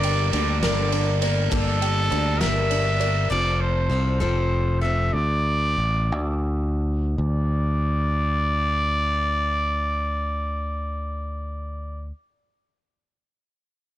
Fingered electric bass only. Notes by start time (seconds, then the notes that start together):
Already playing: G1
0.33 D2
0.63 G1
1.52 G1
2.12 D2
2.42 G1
3.31 F1
3.90 C2
4.21 F1
5.14 D2
5.78 A1
6.12 D2
7.18 D2